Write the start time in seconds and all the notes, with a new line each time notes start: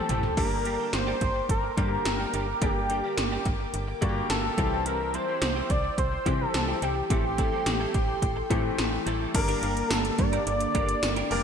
Already playing: E3 A3 C4 G4 A4 G5 C6
0.09 A1 E3 A3 C4 G4, closed hi-hat, mid tom
0.23 muted clean electric guitar stroke, floor tom
0.37 G1 D3 G3 A3 A#3 D4 G4 A#4 D6, kick, crash
0.44 A#3
0.65 G3 A#3 D4 G4, closed hi-hat
0.79 G3 A#3 D4 G4
0.93 G1 C5, muted clean electric guitar stroke, snare, closed hi-hat
1.07 G3 A#3 D4 G4
1.21 G1, muted clean electric guitar stroke, kick, closed hi-hat
1.35 muted clean electric guitar stroke
1.49 G1 A#4, kick, closed hi-hat
1.63 muted clean electric guitar stroke
1.77 G2 D3 G3 A#3 D4 G4, kick, closed hi-hat
1.91 muted clean electric guitar stroke
2.05 G1, muted clean electric guitar stroke, snare, closed hi-hat
2.19 G3 A#3 D4 G4
2.33 G1 G3 A#3 D4 G4, closed hi-hat
2.47 muted clean electric guitar stroke
2.61 G1 D3 G3 A#3 D4 G4, kick, closed hi-hat
2.89 G3 A#3 D4 G4, closed hi-hat
3.04 G3 A#3 D4 G4
3.17 G1, muted clean electric guitar stroke, snare, closed hi-hat
3.32 G3 A#3 D4 G4
3.45 G1, muted clean electric guitar stroke, kick, closed hi-hat
3.60 muted clean electric guitar stroke
3.74 G1, closed hi-hat
3.88 muted clean electric guitar stroke
4.01 G2 D3 G3 A#3 D4 F#4 G4, kick, closed hi-hat
4.09 G4
4.16 muted clean electric guitar stroke
4.30 G1 A4, muted clean electric guitar stroke, snare, closed hi-hat
4.44 muted clean electric guitar stroke
4.57 C2 E3 G3 C4 E4 G4 C5 E6, kick, closed hi-hat
4.72 G3 C4 E4 G4
4.85 G3 C4 E4 G4 A#4, closed hi-hat
5.14 G3 C4 E4 G4 C5, closed hi-hat
5.28 G3 C4 E4 G4
5.42 C2, snare, closed hi-hat
5.56 G3 C4 E4 G4
5.70 C2 D5, muted clean electric guitar stroke, kick, closed hi-hat
5.84 muted clean electric guitar stroke
5.98 C2 C5, kick, closed hi-hat
6.12 muted clean electric guitar stroke
6.26 C3 E3 G3 C4 E4 G4, kick, closed hi-hat
6.40 A4, muted clean electric guitar stroke
6.54 C2, snare, closed hi-hat
6.68 G3 C4 E4 G4
6.82 C2 G3 C4 E4 G4, closed hi-hat
6.96 muted clean electric guitar stroke
7.10 A1 E3 G3 A3 C4 E4 G4 A4 G5 C6, kick, closed hi-hat
7.38 G3 C4 E4 A4, kick, closed hi-hat
7.52 G3 C4 E4 A4
7.66 A1, snare, closed hi-hat
7.80 G3 C4 E4 A4
7.94 A1, muted clean electric guitar stroke, kick, closed hi-hat
8.08 muted clean electric guitar stroke
8.22 A1, kick, closed hi-hat
8.36 muted clean electric guitar stroke
8.50 A2 E3 G3 A3 C4 E4 G4 A4, kick, closed hi-hat
8.64 muted clean electric guitar stroke
8.78 A1, muted clean electric guitar stroke, snare, closed hi-hat
8.92 muted clean electric guitar stroke
9.06 A1 G3 C4 E4 A4, closed hi-hat
9.20 G3 C4 E4 A4
9.34 G1 D3 G3 A#3 D4 G4 A#4, muted clean electric guitar stroke, kick, closed hi-hat, crash
9.48 A#3 D4 G4 A#4, closed hi-hat
9.62 G1 A#3 D4 G4 A#4, closed hi-hat
9.76 muted clean electric guitar stroke, closed hi-hat
9.90 G1 A#3 D4 G4 A4 A#4, snare, closed hi-hat, tambourine
10.04 muted clean electric guitar stroke, closed hi-hat
10.18 G2 D5, muted clean electric guitar stroke, kick, closed hi-hat
10.32 A#3 D4 G4 A#4, closed hi-hat
10.46 G1, muted clean electric guitar stroke, closed hi-hat
10.60 muted clean electric guitar stroke, closed hi-hat
10.74 G1 A#3 D4 G4 A#4, kick, closed hi-hat
10.88 muted clean electric guitar stroke, closed hi-hat
11.03 G1, muted clean electric guitar stroke, snare, closed hi-hat, tambourine
11.16 A#3 D4 G4 A#4, closed hi-hat
11.30 F1 G3 A#3 D4 G4 A#4 D5, open hi-hat